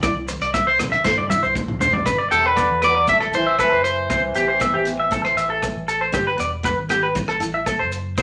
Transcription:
0.03 C2 E4 D5, kick, cross-stick, closed hi-hat, maracas
0.28 C4, muted clean electric guitar stroke, closed hi-hat, maracas
0.41 C2 D5, closed hi-hat
0.54 C4 E5, kick, cross-stick, closed hi-hat, maracas
0.67 C5
0.79 C3 B3, cross-stick, closed hi-hat, low conga, maracas
0.92 E5, closed hi-hat, high conga, maracas
1.04 G2 C4 C5, kick, snare, maracas
1.18 D5, high conga
1.30 E4 E5, high tom, high conga, maracas
1.42 C2 C5, high conga, maracas
1.55 kick, mid tom, high conga, maracas
1.68 mid tom, high conga
1.80 C5, floor tom, low conga, maracas
1.92 A1 D5, floor tom, low conga
2.06 G1 D4 B4, kick, cross-stick, maracas
2.18 D5
2.31 E1 C3 B3 A4 G5, closed hi-hat, maracas
2.46 D3 B4
2.57 B3 D5, kick, cross-stick, maracas
2.70 E2
2.82 B3 B4 D5, cross-stick, closed hi-hat, maracas
2.86 F#3
2.95 D5
3.08 A1 A3 C4 E5, kick, maracas
3.20 A4, cross-stick
3.33 A1 E3 E4 C5, closed hi-hat, maracas
3.47 E5
3.59 E3 A4 B4, kick, cross-stick, maracas
3.72 F#1 C5
3.84 E3 C5, closed hi-hat, maracas
4.10 C2 C4 C5, kick, cross-stick, maracas
4.34 A1 B3 G4, closed hi-hat, maracas
4.48 C5
4.60 B3 E5, kick, cross-stick, maracas
4.74 A1 G4
4.85 B3, closed hi-hat, maracas
5.00 E5
5.11 A1 C4 A4, kick, maracas
5.24 C5, cross-stick
5.37 A1 E5, closed hi-hat, maracas
5.50 A4
5.62 kick, cross-stick, maracas
5.76 A1
5.88 A4, closed hi-hat, maracas
6.01 C5
6.12 G1 D4 G4, kick, cross-stick, maracas
6.27 B4
6.38 E1 B3 D5, closed hi-hat, maracas
6.63 B3 B4, kick, cross-stick, maracas
6.77 G#1
6.89 B3 G4, cross-stick, closed hi-hat, maracas
7.03 B4
7.15 A1 C4, kick, maracas
7.28 A4, cross-stick
7.40 A1 E4, closed hi-hat, maracas
7.54 E5
7.66 A4, kick, cross-stick, maracas
7.79 F#1 C5
7.92 closed hi-hat, maracas
8.18 C2 C4 C5, kick, cross-stick, maracas

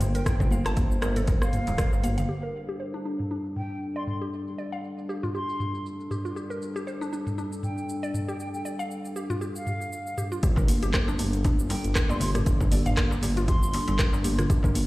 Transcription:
Already playing: G1 A#3 F4 C5
0.00 closed hi-hat, mid tom, darbuka tek, high conga, darbuka dum, shaker
0.15 A#4 G5, closed hi-hat, shaker
0.26 G1 G5, kick, cross-stick, closed hi-hat, shaker
0.40 G5, kick, darbuka tek, darbuka dum, low conga, shaker
0.51 F5, high conga, shaker
0.65 G1 A5, cross-stick, closed hi-hat, darbuka tek, shaker
0.76 kick, closed hi-hat, high conga, shaker
0.92 shaker
1.02 G1 A#4, cross-stick, closed hi-hat, darbuka ka, darbuka tek, high conga, shaker
1.16 A4, closed hi-hat, mid tom, shaker
1.27 A#4, kick, closed hi-hat, darbuka tek, low conga, shaker
1.42 G1 F5, cross-stick, shaker
1.53 closed hi-hat, mid tom, high conga, shaker
1.67 D1, closed hi-hat, darbuka ka, darbuka tek, low conga, shaker
1.78 D5, kick, cross-stick, closed hi-hat, shaker
1.93 G1, darbuka tek, shaker
2.03 F5, closed hi-hat, mid tom, high conga, shaker
2.18 F5, closed hi-hat, darbuka dum, shaker
2.29 G3 D4 G4 A4
2.43 A#4, shaker
2.55 shaker
2.69 G4, shaker
2.80 C5, shaker
2.94 D4, shaker
3.05 D4, shaker
3.20 mid tom, shaker
3.31 D4, shaker
3.46 shaker
3.56 G5, mid tom, shaker
3.71 shaker
3.82 shaker
3.96 D5 C6, shaker
4.07 C6, mid tom, shaker
4.22 G4, shaker
4.33 shaker
4.47 shaker
4.58 D5, shaker
4.72 F5, shaker
4.84 shaker
4.98 shaker
5.09 G4, shaker
5.23 F4, mid tom, shaker
5.35 G4 C6, shaker
5.49 shaker
5.60 mid tom, shaker
5.75 shaker
5.86 shaker
6.00 shaker
6.11 G4, mid tom, shaker
6.25 F4, shaker
6.36 G4, shaker
6.50 A#4, shaker
6.62 shaker
6.76 G4, shaker
6.87 C5, shaker
7.01 D4, shaker
7.13 D4, shaker
7.27 mid tom, shaker
7.38 D4, shaker
7.53 shaker
7.63 G5, mid tom, shaker
7.78 shaker
7.89 shaker
8.03 D5, shaker
8.14 mid tom, shaker
8.28 G4 G5, shaker
8.40 G5, shaker
8.54 G5, shaker
8.65 D5, shaker
8.79 F5, shaker
8.91 shaker
9.05 shaker
9.16 G4, shaker
9.30 F4, mid tom, shaker
9.41 G4, shaker
9.56 F5, shaker
9.67 mid tom, shaker
9.81 shaker
9.92 shaker
10.07 shaker
10.18 G4, mid tom, shaker
10.32 F4, shaker
10.43 G1 G3 D4 G4 A4, kick, closed hi-hat, shaker
10.56 A#4, kick, darbuka tek, low conga, darbuka dum, shaker
10.68 open hi-hat, high conga, shaker
10.83 G1 G4, closed hi-hat, shaker
10.93 C5, kick, cross-stick, clap, closed hi-hat, high conga, shaker
11.08 D4, darbuka tek, shaker
11.19 G1 D4, open hi-hat, high conga, shaker
11.33 closed hi-hat, shaker
11.45 D4, kick, closed hi-hat, mid tom, darbuka ka, high conga, shaker
11.59 G1, shaker
11.70 G5, open hi-hat, darbuka tek, low conga, shaker
11.84 G1, closed hi-hat, shaker
11.95 kick, cross-stick, clap, closed hi-hat, shaker
12.09 G1 D5 C6, darbuka tek, high conga, shaker
12.20 C6, open hi-hat, darbuka tek, high conga, darbuka dum, shaker
12.35 G4, cross-stick, closed hi-hat, mid tom, shaker
12.46 G1, kick, closed hi-hat, shaker
12.61 kick, darbuka tek, darbuka dum, low conga, shaker
12.72 D5, open hi-hat, high conga, shaker
12.86 G1 F5, closed hi-hat, mid tom, shaker
12.97 kick, cross-stick, clap, closed hi-hat, high conga, shaker
13.11 darbuka tek, shaker
13.22 G1 G4, mid tom, open hi-hat, darbuka ka, high conga, shaker
13.37 F4, closed hi-hat, shaker
13.48 G4 C6, kick, closed hi-hat, mid tom, low conga, shaker
13.62 G1, shaker
13.73 open hi-hat, high conga, darbuka tek, shaker
13.88 G1, closed hi-hat, darbuka ka, darbuka tek, low conga, shaker
13.99 kick, cross-stick, clap, closed hi-hat, shaker
14.13 G1, darbuka tek, shaker
14.24 G4, open hi-hat, high conga, shaker
14.39 F4, cross-stick, closed hi-hat, darbuka dum, shaker
14.50 G1 G4, kick, closed hi-hat, shaker
14.63 A#4, kick, darbuka tek, darbuka dum, low conga, shaker
14.75 open hi-hat, high conga, shaker

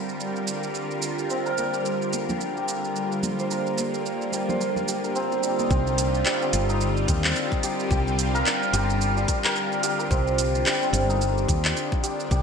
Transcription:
Already playing: C2 D3 G3 C4 F4 A#4
0.09 shaker
0.20 shaker
0.36 shaker
0.47 shaker
0.63 shaker
0.75 shaker
0.91 shaker
1.02 shaker
1.19 shaker
1.30 C4, shaker
1.46 A#4, shaker
1.58 A#4, high conga, shaker
1.74 shaker
1.85 shaker
2.02 shaker
2.13 high bongo, high conga, shaker
2.29 A#3, high bongo, high conga, low conga, shaker
2.41 shaker
2.57 G4, shaker
2.68 shaker
2.84 shaker
2.96 shaker
3.12 shaker
3.23 high conga, low conga, shaker
3.39 C5, shaker
3.51 A#4, shaker
3.67 shaker
3.78 C5, high conga, shaker
3.94 shaker
4.06 shaker
4.21 shaker
4.32 G3, high bongo, high conga, shaker
4.49 C5, high bongo, high conga, low conga, shaker
4.60 A#4, shaker
4.76 low conga, shaker
4.88 G4, shaker
5.04 A#4, shaker
5.15 C4, shaker
5.32 high bongo, shaker
5.43 G3, high bongo, shaker
5.59 D#4, high conga, shaker
5.70 C2 C4, kick, shaker
5.87 shaker
5.98 closed hi-hat, shaker
6.08 C4
6.14 shaker
6.25 G3, clap, shaker
6.42 C4, shaker
6.53 G1, closed hi-hat, shaker
6.69 D#4, shaker
6.81 shaker
6.97 shaker
7.08 D#2 G3, kick, closed hi-hat, shaker
7.24 clap, shaker
7.36 shaker
7.52 kick, shaker
7.63 G4, closed hi-hat, shaker
7.80 shaker
7.91 C2 G4, kick, shaker
8.07 shaker
8.19 closed hi-hat, shaker
8.35 A#4, shaker
8.46 clap, shaker
8.63 shaker
8.73 G1 G4, closed hi-hat, shaker
8.90 shaker
9.01 shaker
9.17 G3, shaker
9.28 A#4, kick, closed hi-hat, shaker
9.44 A#4, clap, shaker
9.56 shaker
9.72 shaker
9.83 G4, closed hi-hat, shaker
9.99 A#4, shaker
10.11 C2 C4, kick, shaker
10.27 shaker
10.38 closed hi-hat, shaker
10.55 shaker
10.66 G3, clap, shaker
10.82 C4, shaker
10.93 G1, closed hi-hat, shaker
11.10 D#4, shaker
11.20 D4, shaker
11.38 shaker
11.49 D#2 G3, kick, closed hi-hat, shaker
11.65 clap, shaker
11.77 shaker
11.92 kick, shaker
12.04 G4, closed hi-hat, shaker
12.20 shaker
12.31 C2 G4, kick, shaker

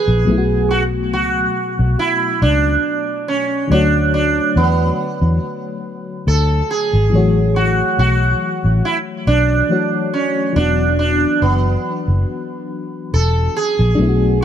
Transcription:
Already playing: D3 E3 F#3 B3 E4 G#4
0.07 A#1
0.24 B1 B2 F#3 A3
0.29 B3 E4
0.38 F#4
0.71 F#4
1.13 C#2 F#4
1.79 B1
1.99 E4
2.41 C#2 D4
3.28 C#4
3.67 D2 D3 F#3 A3
3.71 D4 F#4 C#5
4.14 D4
4.56 E2 B3
5.21 E2
6.27 D2 A4
6.71 G#4
6.93 G#1
7.10 A1 E3 F#3 A3
7.15 F#4 C#5
7.56 F#4
7.98 B1 F#4
8.64 A1
8.85 E4
9.27 B1 D4
9.69 E3 F#3 A3 F#4 C#5
10.13 C#4
10.53 E1 E3 F#3 B3 D4
10.58 D4 F#4
10.99 D4
11.41 F#1 B3
12.07 F#1
13.13 E1 A4
13.56 G#4
13.79 A#1
13.95 B1 F#3 A3 D4
14.01 B3 E4
14.09 F#4

